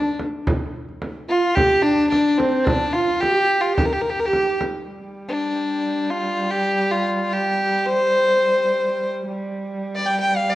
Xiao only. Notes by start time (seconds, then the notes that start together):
Already playing: D4
1.29 F4
1.55 G4
1.84 D4
2.12 D4
2.40 C5
2.67 D4
2.95 F4
3.23 G4
4.27 G4